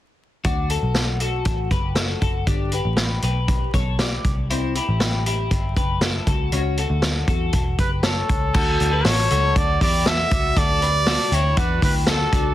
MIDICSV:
0, 0, Header, 1, 5, 480
1, 0, Start_track
1, 0, Key_signature, 2, "major"
1, 0, Tempo, 505476
1, 425, Time_signature, 4, 2, 24, 8
1, 11911, End_track
2, 0, Start_track
2, 0, Title_t, "Trumpet"
2, 0, Program_c, 0, 56
2, 7400, Note_on_c, 0, 71, 71
2, 7508, Note_off_c, 0, 71, 0
2, 7642, Note_on_c, 0, 69, 81
2, 8087, Note_off_c, 0, 69, 0
2, 8126, Note_on_c, 0, 69, 98
2, 8608, Note_on_c, 0, 73, 105
2, 8622, Note_off_c, 0, 69, 0
2, 9089, Note_on_c, 0, 74, 104
2, 9104, Note_off_c, 0, 73, 0
2, 9323, Note_off_c, 0, 74, 0
2, 9333, Note_on_c, 0, 74, 102
2, 9570, Note_on_c, 0, 76, 109
2, 9585, Note_off_c, 0, 74, 0
2, 10047, Note_on_c, 0, 74, 121
2, 10062, Note_off_c, 0, 76, 0
2, 10773, Note_on_c, 0, 73, 96
2, 10787, Note_off_c, 0, 74, 0
2, 11002, Note_on_c, 0, 71, 90
2, 11016, Note_off_c, 0, 73, 0
2, 11235, Note_off_c, 0, 71, 0
2, 11246, Note_on_c, 0, 71, 90
2, 11349, Note_off_c, 0, 71, 0
2, 11488, Note_on_c, 0, 69, 93
2, 11911, Note_off_c, 0, 69, 0
2, 11911, End_track
3, 0, Start_track
3, 0, Title_t, "Clean electric guitar"
3, 0, Program_c, 1, 27
3, 428, Note_on_c, 1, 66, 71
3, 435, Note_on_c, 1, 62, 56
3, 661, Note_off_c, 1, 66, 0
3, 667, Note_on_c, 1, 69, 62
3, 671, Note_off_c, 1, 62, 0
3, 672, Note_on_c, 1, 66, 47
3, 1119, Note_off_c, 1, 69, 0
3, 1122, Note_off_c, 1, 66, 0
3, 1146, Note_on_c, 1, 69, 60
3, 1155, Note_on_c, 1, 66, 46
3, 1599, Note_off_c, 1, 69, 0
3, 1604, Note_off_c, 1, 66, 0
3, 1627, Note_on_c, 1, 71, 54
3, 1632, Note_on_c, 1, 67, 46
3, 1859, Note_off_c, 1, 71, 0
3, 1862, Note_on_c, 1, 69, 62
3, 1864, Note_off_c, 1, 67, 0
3, 1868, Note_on_c, 1, 66, 48
3, 2093, Note_off_c, 1, 69, 0
3, 2103, Note_off_c, 1, 66, 0
3, 2105, Note_on_c, 1, 69, 63
3, 2114, Note_on_c, 1, 66, 45
3, 2347, Note_off_c, 1, 66, 0
3, 2348, Note_off_c, 1, 69, 0
3, 2350, Note_on_c, 1, 67, 72
3, 2356, Note_on_c, 1, 62, 51
3, 2588, Note_off_c, 1, 67, 0
3, 2593, Note_on_c, 1, 71, 61
3, 2594, Note_off_c, 1, 62, 0
3, 2600, Note_on_c, 1, 67, 47
3, 3044, Note_off_c, 1, 71, 0
3, 3048, Note_off_c, 1, 67, 0
3, 3072, Note_on_c, 1, 71, 60
3, 3079, Note_on_c, 1, 67, 49
3, 3524, Note_off_c, 1, 71, 0
3, 3528, Note_off_c, 1, 67, 0
3, 3552, Note_on_c, 1, 73, 59
3, 3558, Note_on_c, 1, 69, 47
3, 3791, Note_off_c, 1, 73, 0
3, 3795, Note_on_c, 1, 74, 59
3, 3796, Note_off_c, 1, 69, 0
3, 3802, Note_on_c, 1, 67, 48
3, 4247, Note_off_c, 1, 74, 0
3, 4250, Note_off_c, 1, 67, 0
3, 4277, Note_on_c, 1, 64, 71
3, 4282, Note_on_c, 1, 60, 56
3, 4512, Note_off_c, 1, 64, 0
3, 4516, Note_on_c, 1, 67, 65
3, 4519, Note_off_c, 1, 60, 0
3, 4523, Note_on_c, 1, 64, 53
3, 4968, Note_off_c, 1, 67, 0
3, 4972, Note_off_c, 1, 64, 0
3, 4997, Note_on_c, 1, 67, 65
3, 5007, Note_on_c, 1, 64, 52
3, 5449, Note_off_c, 1, 67, 0
3, 5454, Note_off_c, 1, 64, 0
3, 5478, Note_on_c, 1, 71, 61
3, 5486, Note_on_c, 1, 67, 46
3, 5716, Note_off_c, 1, 71, 0
3, 5720, Note_on_c, 1, 69, 63
3, 5722, Note_off_c, 1, 67, 0
3, 5727, Note_on_c, 1, 64, 48
3, 5952, Note_off_c, 1, 69, 0
3, 5963, Note_off_c, 1, 64, 0
3, 5964, Note_on_c, 1, 69, 61
3, 5972, Note_on_c, 1, 66, 48
3, 6187, Note_off_c, 1, 66, 0
3, 6199, Note_on_c, 1, 66, 71
3, 6201, Note_off_c, 1, 69, 0
3, 6206, Note_on_c, 1, 61, 57
3, 6439, Note_off_c, 1, 66, 0
3, 6442, Note_off_c, 1, 61, 0
3, 6442, Note_on_c, 1, 69, 61
3, 6451, Note_on_c, 1, 66, 50
3, 6892, Note_off_c, 1, 69, 0
3, 6897, Note_off_c, 1, 66, 0
3, 6918, Note_on_c, 1, 69, 64
3, 6924, Note_on_c, 1, 66, 51
3, 7370, Note_off_c, 1, 69, 0
3, 7373, Note_off_c, 1, 66, 0
3, 7397, Note_on_c, 1, 71, 63
3, 7405, Note_on_c, 1, 67, 47
3, 7634, Note_off_c, 1, 71, 0
3, 7638, Note_on_c, 1, 73, 59
3, 7642, Note_off_c, 1, 67, 0
3, 7648, Note_on_c, 1, 69, 49
3, 8090, Note_off_c, 1, 73, 0
3, 8095, Note_off_c, 1, 69, 0
3, 8113, Note_on_c, 1, 69, 95
3, 8121, Note_on_c, 1, 66, 77
3, 8454, Note_off_c, 1, 69, 0
3, 8458, Note_off_c, 1, 66, 0
3, 8476, Note_on_c, 1, 71, 80
3, 8483, Note_on_c, 1, 67, 62
3, 8596, Note_off_c, 1, 71, 0
3, 8599, Note_on_c, 1, 69, 74
3, 8601, Note_off_c, 1, 67, 0
3, 8606, Note_on_c, 1, 66, 63
3, 8827, Note_off_c, 1, 69, 0
3, 8831, Note_off_c, 1, 66, 0
3, 8838, Note_on_c, 1, 69, 76
3, 8843, Note_on_c, 1, 66, 59
3, 9288, Note_off_c, 1, 69, 0
3, 9291, Note_off_c, 1, 66, 0
3, 9317, Note_on_c, 1, 67, 76
3, 9328, Note_on_c, 1, 64, 58
3, 9553, Note_off_c, 1, 64, 0
3, 9556, Note_off_c, 1, 67, 0
3, 9557, Note_on_c, 1, 69, 70
3, 9566, Note_on_c, 1, 66, 55
3, 9781, Note_off_c, 1, 66, 0
3, 9792, Note_on_c, 1, 66, 83
3, 9796, Note_off_c, 1, 69, 0
3, 9801, Note_on_c, 1, 62, 65
3, 10029, Note_off_c, 1, 66, 0
3, 10035, Note_on_c, 1, 69, 100
3, 10037, Note_off_c, 1, 62, 0
3, 10041, Note_on_c, 1, 66, 81
3, 10274, Note_off_c, 1, 69, 0
3, 10276, Note_off_c, 1, 66, 0
3, 10278, Note_on_c, 1, 71, 77
3, 10284, Note_on_c, 1, 67, 56
3, 10511, Note_off_c, 1, 71, 0
3, 10515, Note_on_c, 1, 69, 75
3, 10517, Note_off_c, 1, 67, 0
3, 10521, Note_on_c, 1, 66, 58
3, 10749, Note_off_c, 1, 66, 0
3, 10752, Note_off_c, 1, 69, 0
3, 10752, Note_on_c, 1, 67, 77
3, 10758, Note_on_c, 1, 64, 62
3, 10987, Note_off_c, 1, 67, 0
3, 10990, Note_on_c, 1, 66, 82
3, 10994, Note_off_c, 1, 64, 0
3, 11000, Note_on_c, 1, 62, 63
3, 11226, Note_off_c, 1, 66, 0
3, 11230, Note_on_c, 1, 67, 78
3, 11234, Note_off_c, 1, 62, 0
3, 11239, Note_on_c, 1, 64, 60
3, 11465, Note_off_c, 1, 64, 0
3, 11468, Note_off_c, 1, 67, 0
3, 11468, Note_on_c, 1, 69, 82
3, 11476, Note_on_c, 1, 66, 62
3, 11699, Note_off_c, 1, 66, 0
3, 11707, Note_off_c, 1, 69, 0
3, 11710, Note_on_c, 1, 66, 86
3, 11717, Note_on_c, 1, 62, 63
3, 11911, Note_off_c, 1, 62, 0
3, 11911, Note_off_c, 1, 66, 0
3, 11911, End_track
4, 0, Start_track
4, 0, Title_t, "Picked electric bass"
4, 0, Program_c, 2, 34
4, 423, Note_on_c, 2, 38, 75
4, 731, Note_off_c, 2, 38, 0
4, 784, Note_on_c, 2, 35, 73
4, 1357, Note_off_c, 2, 35, 0
4, 1385, Note_on_c, 2, 33, 77
4, 1591, Note_off_c, 2, 33, 0
4, 1623, Note_on_c, 2, 30, 68
4, 2034, Note_off_c, 2, 30, 0
4, 2106, Note_on_c, 2, 30, 81
4, 2312, Note_off_c, 2, 30, 0
4, 2344, Note_on_c, 2, 31, 77
4, 2654, Note_off_c, 2, 31, 0
4, 2707, Note_on_c, 2, 33, 77
4, 3015, Note_off_c, 2, 33, 0
4, 3067, Note_on_c, 2, 35, 73
4, 3478, Note_off_c, 2, 35, 0
4, 3548, Note_on_c, 2, 35, 78
4, 3959, Note_off_c, 2, 35, 0
4, 4033, Note_on_c, 2, 36, 78
4, 4545, Note_off_c, 2, 36, 0
4, 4639, Note_on_c, 2, 33, 79
4, 5209, Note_off_c, 2, 33, 0
4, 5233, Note_on_c, 2, 31, 80
4, 5439, Note_off_c, 2, 31, 0
4, 5476, Note_on_c, 2, 30, 74
4, 5885, Note_off_c, 2, 30, 0
4, 5951, Note_on_c, 2, 37, 82
4, 6159, Note_off_c, 2, 37, 0
4, 6195, Note_on_c, 2, 37, 91
4, 6503, Note_off_c, 2, 37, 0
4, 6550, Note_on_c, 2, 38, 76
4, 6860, Note_off_c, 2, 38, 0
4, 6910, Note_on_c, 2, 40, 82
4, 7118, Note_off_c, 2, 40, 0
4, 7152, Note_on_c, 2, 28, 82
4, 7359, Note_off_c, 2, 28, 0
4, 7395, Note_on_c, 2, 30, 74
4, 7805, Note_off_c, 2, 30, 0
4, 7878, Note_on_c, 2, 37, 79
4, 8083, Note_off_c, 2, 37, 0
4, 8118, Note_on_c, 2, 38, 96
4, 8322, Note_off_c, 2, 38, 0
4, 8362, Note_on_c, 2, 38, 93
4, 8564, Note_off_c, 2, 38, 0
4, 8598, Note_on_c, 2, 33, 88
4, 8802, Note_off_c, 2, 33, 0
4, 8842, Note_on_c, 2, 37, 89
4, 9044, Note_off_c, 2, 37, 0
4, 9079, Note_on_c, 2, 38, 96
4, 9282, Note_off_c, 2, 38, 0
4, 9318, Note_on_c, 2, 40, 84
4, 9724, Note_off_c, 2, 40, 0
4, 9797, Note_on_c, 2, 37, 92
4, 9999, Note_off_c, 2, 37, 0
4, 10033, Note_on_c, 2, 38, 99
4, 10601, Note_off_c, 2, 38, 0
4, 10747, Note_on_c, 2, 38, 110
4, 10952, Note_off_c, 2, 38, 0
4, 10989, Note_on_c, 2, 40, 100
4, 11193, Note_off_c, 2, 40, 0
4, 11227, Note_on_c, 2, 38, 83
4, 11634, Note_off_c, 2, 38, 0
4, 11707, Note_on_c, 2, 37, 90
4, 11910, Note_off_c, 2, 37, 0
4, 11911, End_track
5, 0, Start_track
5, 0, Title_t, "Drums"
5, 421, Note_on_c, 9, 42, 74
5, 425, Note_on_c, 9, 36, 82
5, 516, Note_off_c, 9, 42, 0
5, 520, Note_off_c, 9, 36, 0
5, 661, Note_on_c, 9, 42, 57
5, 756, Note_off_c, 9, 42, 0
5, 898, Note_on_c, 9, 38, 87
5, 909, Note_on_c, 9, 42, 70
5, 993, Note_off_c, 9, 38, 0
5, 1004, Note_off_c, 9, 42, 0
5, 1140, Note_on_c, 9, 42, 63
5, 1235, Note_off_c, 9, 42, 0
5, 1378, Note_on_c, 9, 42, 73
5, 1384, Note_on_c, 9, 36, 69
5, 1473, Note_off_c, 9, 42, 0
5, 1479, Note_off_c, 9, 36, 0
5, 1622, Note_on_c, 9, 42, 51
5, 1623, Note_on_c, 9, 36, 72
5, 1717, Note_off_c, 9, 42, 0
5, 1718, Note_off_c, 9, 36, 0
5, 1855, Note_on_c, 9, 38, 95
5, 1859, Note_on_c, 9, 42, 74
5, 1950, Note_off_c, 9, 38, 0
5, 1954, Note_off_c, 9, 42, 0
5, 2104, Note_on_c, 9, 42, 55
5, 2106, Note_on_c, 9, 36, 71
5, 2199, Note_off_c, 9, 42, 0
5, 2201, Note_off_c, 9, 36, 0
5, 2343, Note_on_c, 9, 42, 71
5, 2345, Note_on_c, 9, 36, 81
5, 2438, Note_off_c, 9, 42, 0
5, 2440, Note_off_c, 9, 36, 0
5, 2581, Note_on_c, 9, 42, 62
5, 2675, Note_off_c, 9, 42, 0
5, 2818, Note_on_c, 9, 38, 89
5, 2828, Note_on_c, 9, 42, 74
5, 2913, Note_off_c, 9, 38, 0
5, 2923, Note_off_c, 9, 42, 0
5, 3062, Note_on_c, 9, 42, 65
5, 3157, Note_off_c, 9, 42, 0
5, 3306, Note_on_c, 9, 42, 72
5, 3308, Note_on_c, 9, 36, 75
5, 3401, Note_off_c, 9, 42, 0
5, 3403, Note_off_c, 9, 36, 0
5, 3549, Note_on_c, 9, 36, 72
5, 3550, Note_on_c, 9, 42, 50
5, 3644, Note_off_c, 9, 36, 0
5, 3645, Note_off_c, 9, 42, 0
5, 3787, Note_on_c, 9, 38, 99
5, 3790, Note_on_c, 9, 42, 74
5, 3882, Note_off_c, 9, 38, 0
5, 3885, Note_off_c, 9, 42, 0
5, 4031, Note_on_c, 9, 42, 56
5, 4032, Note_on_c, 9, 36, 83
5, 4126, Note_off_c, 9, 42, 0
5, 4127, Note_off_c, 9, 36, 0
5, 4277, Note_on_c, 9, 42, 80
5, 4372, Note_off_c, 9, 42, 0
5, 4514, Note_on_c, 9, 42, 65
5, 4609, Note_off_c, 9, 42, 0
5, 4751, Note_on_c, 9, 38, 93
5, 4761, Note_on_c, 9, 42, 69
5, 4846, Note_off_c, 9, 38, 0
5, 4856, Note_off_c, 9, 42, 0
5, 4996, Note_on_c, 9, 42, 64
5, 5091, Note_off_c, 9, 42, 0
5, 5231, Note_on_c, 9, 42, 72
5, 5233, Note_on_c, 9, 36, 73
5, 5326, Note_off_c, 9, 42, 0
5, 5328, Note_off_c, 9, 36, 0
5, 5474, Note_on_c, 9, 36, 77
5, 5476, Note_on_c, 9, 42, 54
5, 5569, Note_off_c, 9, 36, 0
5, 5571, Note_off_c, 9, 42, 0
5, 5708, Note_on_c, 9, 38, 96
5, 5712, Note_on_c, 9, 42, 73
5, 5803, Note_off_c, 9, 38, 0
5, 5807, Note_off_c, 9, 42, 0
5, 5952, Note_on_c, 9, 42, 59
5, 5953, Note_on_c, 9, 36, 85
5, 6047, Note_off_c, 9, 42, 0
5, 6048, Note_off_c, 9, 36, 0
5, 6192, Note_on_c, 9, 42, 78
5, 6287, Note_off_c, 9, 42, 0
5, 6434, Note_on_c, 9, 42, 62
5, 6529, Note_off_c, 9, 42, 0
5, 6668, Note_on_c, 9, 38, 91
5, 6679, Note_on_c, 9, 42, 74
5, 6763, Note_off_c, 9, 38, 0
5, 6774, Note_off_c, 9, 42, 0
5, 6911, Note_on_c, 9, 36, 84
5, 6912, Note_on_c, 9, 42, 62
5, 7005, Note_off_c, 9, 36, 0
5, 7007, Note_off_c, 9, 42, 0
5, 7147, Note_on_c, 9, 42, 75
5, 7153, Note_on_c, 9, 36, 72
5, 7242, Note_off_c, 9, 42, 0
5, 7248, Note_off_c, 9, 36, 0
5, 7393, Note_on_c, 9, 42, 56
5, 7394, Note_on_c, 9, 36, 70
5, 7488, Note_off_c, 9, 42, 0
5, 7489, Note_off_c, 9, 36, 0
5, 7625, Note_on_c, 9, 38, 105
5, 7629, Note_on_c, 9, 42, 76
5, 7720, Note_off_c, 9, 38, 0
5, 7724, Note_off_c, 9, 42, 0
5, 7875, Note_on_c, 9, 42, 60
5, 7877, Note_on_c, 9, 36, 77
5, 7970, Note_off_c, 9, 42, 0
5, 7972, Note_off_c, 9, 36, 0
5, 8114, Note_on_c, 9, 49, 92
5, 8117, Note_on_c, 9, 36, 95
5, 8209, Note_off_c, 9, 49, 0
5, 8212, Note_off_c, 9, 36, 0
5, 8356, Note_on_c, 9, 46, 72
5, 8358, Note_on_c, 9, 44, 66
5, 8451, Note_off_c, 9, 46, 0
5, 8453, Note_off_c, 9, 44, 0
5, 8591, Note_on_c, 9, 38, 105
5, 8597, Note_on_c, 9, 44, 65
5, 8602, Note_on_c, 9, 46, 90
5, 8686, Note_off_c, 9, 38, 0
5, 8692, Note_off_c, 9, 44, 0
5, 8697, Note_off_c, 9, 46, 0
5, 8835, Note_on_c, 9, 46, 76
5, 8837, Note_on_c, 9, 44, 64
5, 8930, Note_off_c, 9, 46, 0
5, 8931, Note_off_c, 9, 44, 0
5, 9076, Note_on_c, 9, 46, 94
5, 9077, Note_on_c, 9, 36, 84
5, 9079, Note_on_c, 9, 44, 66
5, 9171, Note_off_c, 9, 46, 0
5, 9172, Note_off_c, 9, 36, 0
5, 9174, Note_off_c, 9, 44, 0
5, 9317, Note_on_c, 9, 36, 87
5, 9320, Note_on_c, 9, 44, 64
5, 9321, Note_on_c, 9, 46, 63
5, 9412, Note_off_c, 9, 36, 0
5, 9415, Note_off_c, 9, 44, 0
5, 9416, Note_off_c, 9, 46, 0
5, 9552, Note_on_c, 9, 38, 114
5, 9555, Note_on_c, 9, 46, 86
5, 9557, Note_on_c, 9, 44, 64
5, 9647, Note_off_c, 9, 38, 0
5, 9650, Note_off_c, 9, 46, 0
5, 9652, Note_off_c, 9, 44, 0
5, 9793, Note_on_c, 9, 46, 67
5, 9794, Note_on_c, 9, 44, 66
5, 9796, Note_on_c, 9, 36, 95
5, 9888, Note_off_c, 9, 44, 0
5, 9888, Note_off_c, 9, 46, 0
5, 9891, Note_off_c, 9, 36, 0
5, 10032, Note_on_c, 9, 44, 65
5, 10032, Note_on_c, 9, 46, 91
5, 10033, Note_on_c, 9, 36, 105
5, 10127, Note_off_c, 9, 44, 0
5, 10127, Note_off_c, 9, 46, 0
5, 10128, Note_off_c, 9, 36, 0
5, 10274, Note_on_c, 9, 46, 78
5, 10276, Note_on_c, 9, 44, 67
5, 10369, Note_off_c, 9, 46, 0
5, 10371, Note_off_c, 9, 44, 0
5, 10507, Note_on_c, 9, 38, 106
5, 10512, Note_on_c, 9, 44, 67
5, 10518, Note_on_c, 9, 46, 88
5, 10602, Note_off_c, 9, 38, 0
5, 10607, Note_off_c, 9, 44, 0
5, 10613, Note_off_c, 9, 46, 0
5, 10751, Note_on_c, 9, 46, 78
5, 10753, Note_on_c, 9, 44, 61
5, 10846, Note_off_c, 9, 46, 0
5, 10847, Note_off_c, 9, 44, 0
5, 10985, Note_on_c, 9, 46, 96
5, 10989, Note_on_c, 9, 36, 90
5, 10989, Note_on_c, 9, 44, 63
5, 11080, Note_off_c, 9, 46, 0
5, 11084, Note_off_c, 9, 36, 0
5, 11084, Note_off_c, 9, 44, 0
5, 11228, Note_on_c, 9, 36, 88
5, 11230, Note_on_c, 9, 44, 64
5, 11232, Note_on_c, 9, 46, 64
5, 11323, Note_off_c, 9, 36, 0
5, 11325, Note_off_c, 9, 44, 0
5, 11327, Note_off_c, 9, 46, 0
5, 11458, Note_on_c, 9, 38, 118
5, 11461, Note_on_c, 9, 46, 86
5, 11464, Note_on_c, 9, 44, 66
5, 11553, Note_off_c, 9, 38, 0
5, 11556, Note_off_c, 9, 46, 0
5, 11559, Note_off_c, 9, 44, 0
5, 11704, Note_on_c, 9, 44, 67
5, 11704, Note_on_c, 9, 46, 70
5, 11705, Note_on_c, 9, 36, 86
5, 11799, Note_off_c, 9, 44, 0
5, 11799, Note_off_c, 9, 46, 0
5, 11800, Note_off_c, 9, 36, 0
5, 11911, End_track
0, 0, End_of_file